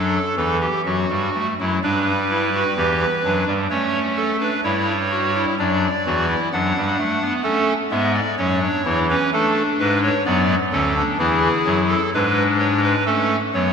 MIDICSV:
0, 0, Header, 1, 2, 480
1, 0, Start_track
1, 0, Key_signature, 2, "major"
1, 0, Tempo, 960000
1, 1377, Tempo, 938967
1, 1858, Time_signature, 4, 2, 24, 8
1, 6987, End_track
2, 0, Start_track
2, 0, Title_t, "Pipe organ"
2, 0, Program_c, 0, 19
2, 0, Note_on_c, 0, 42, 66
2, 0, Note_on_c, 0, 54, 60
2, 0, Note_on_c, 0, 62, 71
2, 0, Note_on_c, 0, 69, 61
2, 92, Note_off_c, 0, 54, 0
2, 94, Note_off_c, 0, 42, 0
2, 95, Note_off_c, 0, 62, 0
2, 176, Note_off_c, 0, 69, 0
2, 185, Note_on_c, 0, 40, 55
2, 185, Note_on_c, 0, 52, 64
2, 186, Note_on_c, 0, 69, 78
2, 287, Note_off_c, 0, 69, 0
2, 306, Note_on_c, 0, 67, 72
2, 333, Note_off_c, 0, 40, 0
2, 333, Note_off_c, 0, 52, 0
2, 406, Note_off_c, 0, 67, 0
2, 428, Note_on_c, 0, 42, 59
2, 428, Note_on_c, 0, 54, 62
2, 429, Note_on_c, 0, 66, 67
2, 528, Note_off_c, 0, 42, 0
2, 528, Note_off_c, 0, 54, 0
2, 550, Note_on_c, 0, 55, 61
2, 551, Note_on_c, 0, 43, 55
2, 649, Note_off_c, 0, 55, 0
2, 650, Note_off_c, 0, 43, 0
2, 675, Note_on_c, 0, 57, 59
2, 735, Note_off_c, 0, 66, 0
2, 772, Note_off_c, 0, 57, 0
2, 800, Note_on_c, 0, 42, 61
2, 800, Note_on_c, 0, 54, 63
2, 802, Note_on_c, 0, 64, 78
2, 895, Note_off_c, 0, 42, 0
2, 895, Note_off_c, 0, 54, 0
2, 896, Note_off_c, 0, 64, 0
2, 916, Note_on_c, 0, 55, 64
2, 916, Note_on_c, 0, 62, 72
2, 917, Note_on_c, 0, 71, 62
2, 918, Note_on_c, 0, 43, 63
2, 1059, Note_off_c, 0, 62, 0
2, 1153, Note_on_c, 0, 64, 70
2, 1250, Note_off_c, 0, 64, 0
2, 1274, Note_on_c, 0, 66, 74
2, 1319, Note_off_c, 0, 55, 0
2, 1320, Note_off_c, 0, 43, 0
2, 1369, Note_off_c, 0, 66, 0
2, 1383, Note_on_c, 0, 40, 72
2, 1385, Note_on_c, 0, 52, 63
2, 1386, Note_on_c, 0, 67, 79
2, 1531, Note_off_c, 0, 40, 0
2, 1532, Note_off_c, 0, 52, 0
2, 1533, Note_off_c, 0, 67, 0
2, 1627, Note_on_c, 0, 54, 54
2, 1628, Note_on_c, 0, 42, 57
2, 1630, Note_on_c, 0, 62, 67
2, 1726, Note_off_c, 0, 54, 0
2, 1727, Note_off_c, 0, 42, 0
2, 1732, Note_off_c, 0, 71, 0
2, 1746, Note_on_c, 0, 55, 65
2, 1748, Note_on_c, 0, 43, 65
2, 1775, Note_off_c, 0, 62, 0
2, 1845, Note_off_c, 0, 55, 0
2, 1846, Note_off_c, 0, 43, 0
2, 1862, Note_on_c, 0, 73, 67
2, 1863, Note_on_c, 0, 57, 67
2, 1867, Note_on_c, 0, 61, 78
2, 2009, Note_off_c, 0, 73, 0
2, 2100, Note_on_c, 0, 69, 58
2, 2172, Note_off_c, 0, 61, 0
2, 2202, Note_off_c, 0, 69, 0
2, 2219, Note_on_c, 0, 62, 72
2, 2222, Note_on_c, 0, 71, 61
2, 2273, Note_off_c, 0, 57, 0
2, 2322, Note_off_c, 0, 62, 0
2, 2323, Note_off_c, 0, 71, 0
2, 2341, Note_on_c, 0, 43, 67
2, 2341, Note_on_c, 0, 73, 64
2, 2343, Note_on_c, 0, 55, 73
2, 2343, Note_on_c, 0, 64, 77
2, 2491, Note_off_c, 0, 64, 0
2, 2584, Note_on_c, 0, 66, 72
2, 2686, Note_off_c, 0, 66, 0
2, 2707, Note_on_c, 0, 64, 86
2, 2756, Note_off_c, 0, 43, 0
2, 2756, Note_off_c, 0, 73, 0
2, 2757, Note_off_c, 0, 55, 0
2, 2808, Note_off_c, 0, 64, 0
2, 2825, Note_on_c, 0, 62, 80
2, 2826, Note_on_c, 0, 54, 71
2, 2827, Note_on_c, 0, 42, 69
2, 2828, Note_on_c, 0, 74, 65
2, 2974, Note_off_c, 0, 54, 0
2, 2974, Note_off_c, 0, 62, 0
2, 2975, Note_off_c, 0, 42, 0
2, 3068, Note_on_c, 0, 40, 67
2, 3068, Note_on_c, 0, 52, 66
2, 3068, Note_on_c, 0, 66, 78
2, 3170, Note_off_c, 0, 66, 0
2, 3184, Note_on_c, 0, 64, 82
2, 3215, Note_off_c, 0, 40, 0
2, 3216, Note_off_c, 0, 52, 0
2, 3240, Note_off_c, 0, 74, 0
2, 3287, Note_off_c, 0, 64, 0
2, 3307, Note_on_c, 0, 42, 72
2, 3307, Note_on_c, 0, 78, 68
2, 3308, Note_on_c, 0, 54, 76
2, 3309, Note_on_c, 0, 62, 86
2, 3409, Note_off_c, 0, 42, 0
2, 3409, Note_off_c, 0, 54, 0
2, 3432, Note_on_c, 0, 43, 68
2, 3432, Note_on_c, 0, 55, 69
2, 3531, Note_off_c, 0, 43, 0
2, 3531, Note_off_c, 0, 55, 0
2, 3538, Note_on_c, 0, 57, 65
2, 3643, Note_off_c, 0, 57, 0
2, 3659, Note_on_c, 0, 59, 76
2, 3717, Note_off_c, 0, 78, 0
2, 3718, Note_off_c, 0, 62, 0
2, 3763, Note_off_c, 0, 59, 0
2, 3770, Note_on_c, 0, 57, 75
2, 3770, Note_on_c, 0, 69, 88
2, 3774, Note_on_c, 0, 61, 79
2, 3921, Note_off_c, 0, 57, 0
2, 3922, Note_off_c, 0, 69, 0
2, 3924, Note_off_c, 0, 61, 0
2, 4011, Note_on_c, 0, 44, 72
2, 4013, Note_on_c, 0, 56, 76
2, 4013, Note_on_c, 0, 59, 73
2, 4015, Note_on_c, 0, 76, 83
2, 4120, Note_off_c, 0, 76, 0
2, 4133, Note_on_c, 0, 74, 86
2, 4162, Note_off_c, 0, 44, 0
2, 4163, Note_off_c, 0, 56, 0
2, 4163, Note_off_c, 0, 59, 0
2, 4238, Note_off_c, 0, 74, 0
2, 4253, Note_on_c, 0, 73, 85
2, 4254, Note_on_c, 0, 54, 75
2, 4255, Note_on_c, 0, 61, 72
2, 4256, Note_on_c, 0, 42, 71
2, 4360, Note_off_c, 0, 61, 0
2, 4370, Note_on_c, 0, 62, 64
2, 4405, Note_off_c, 0, 54, 0
2, 4406, Note_off_c, 0, 42, 0
2, 4478, Note_off_c, 0, 62, 0
2, 4494, Note_on_c, 0, 64, 70
2, 4495, Note_on_c, 0, 40, 76
2, 4497, Note_on_c, 0, 52, 73
2, 4566, Note_off_c, 0, 73, 0
2, 4601, Note_off_c, 0, 64, 0
2, 4621, Note_on_c, 0, 71, 90
2, 4622, Note_on_c, 0, 61, 75
2, 4646, Note_off_c, 0, 40, 0
2, 4647, Note_off_c, 0, 52, 0
2, 4724, Note_off_c, 0, 71, 0
2, 4725, Note_off_c, 0, 61, 0
2, 4740, Note_on_c, 0, 62, 69
2, 4741, Note_on_c, 0, 57, 71
2, 4741, Note_on_c, 0, 69, 86
2, 4890, Note_off_c, 0, 57, 0
2, 4890, Note_off_c, 0, 69, 0
2, 4977, Note_on_c, 0, 71, 83
2, 4980, Note_on_c, 0, 44, 80
2, 4980, Note_on_c, 0, 56, 70
2, 5082, Note_off_c, 0, 71, 0
2, 5097, Note_on_c, 0, 73, 83
2, 5128, Note_off_c, 0, 44, 0
2, 5128, Note_off_c, 0, 56, 0
2, 5152, Note_off_c, 0, 62, 0
2, 5201, Note_off_c, 0, 73, 0
2, 5212, Note_on_c, 0, 59, 78
2, 5212, Note_on_c, 0, 74, 103
2, 5214, Note_on_c, 0, 42, 83
2, 5216, Note_on_c, 0, 54, 85
2, 5362, Note_off_c, 0, 59, 0
2, 5362, Note_off_c, 0, 74, 0
2, 5364, Note_off_c, 0, 42, 0
2, 5365, Note_off_c, 0, 54, 0
2, 5451, Note_on_c, 0, 38, 67
2, 5452, Note_on_c, 0, 61, 61
2, 5453, Note_on_c, 0, 50, 64
2, 5454, Note_on_c, 0, 69, 76
2, 5557, Note_off_c, 0, 61, 0
2, 5575, Note_on_c, 0, 62, 72
2, 5602, Note_off_c, 0, 38, 0
2, 5603, Note_off_c, 0, 50, 0
2, 5603, Note_off_c, 0, 69, 0
2, 5680, Note_off_c, 0, 62, 0
2, 5689, Note_on_c, 0, 40, 79
2, 5690, Note_on_c, 0, 52, 79
2, 5690, Note_on_c, 0, 68, 89
2, 5691, Note_on_c, 0, 64, 77
2, 5841, Note_off_c, 0, 40, 0
2, 5842, Note_off_c, 0, 52, 0
2, 5927, Note_on_c, 0, 54, 67
2, 5929, Note_on_c, 0, 42, 80
2, 6003, Note_off_c, 0, 68, 0
2, 6048, Note_on_c, 0, 69, 79
2, 6079, Note_off_c, 0, 54, 0
2, 6081, Note_off_c, 0, 42, 0
2, 6107, Note_off_c, 0, 64, 0
2, 6155, Note_off_c, 0, 69, 0
2, 6175, Note_on_c, 0, 62, 70
2, 6177, Note_on_c, 0, 71, 84
2, 6178, Note_on_c, 0, 44, 75
2, 6178, Note_on_c, 0, 56, 79
2, 6325, Note_off_c, 0, 71, 0
2, 6409, Note_on_c, 0, 73, 74
2, 6515, Note_off_c, 0, 73, 0
2, 6533, Note_on_c, 0, 71, 91
2, 6588, Note_off_c, 0, 62, 0
2, 6589, Note_off_c, 0, 44, 0
2, 6589, Note_off_c, 0, 56, 0
2, 6638, Note_off_c, 0, 71, 0
2, 6647, Note_on_c, 0, 69, 79
2, 6648, Note_on_c, 0, 57, 75
2, 6650, Note_on_c, 0, 61, 68
2, 6800, Note_off_c, 0, 57, 0
2, 6800, Note_off_c, 0, 69, 0
2, 6802, Note_off_c, 0, 61, 0
2, 6890, Note_on_c, 0, 54, 65
2, 6891, Note_on_c, 0, 42, 67
2, 6892, Note_on_c, 0, 59, 63
2, 6892, Note_on_c, 0, 73, 79
2, 6987, Note_off_c, 0, 42, 0
2, 6987, Note_off_c, 0, 54, 0
2, 6987, Note_off_c, 0, 59, 0
2, 6987, Note_off_c, 0, 73, 0
2, 6987, End_track
0, 0, End_of_file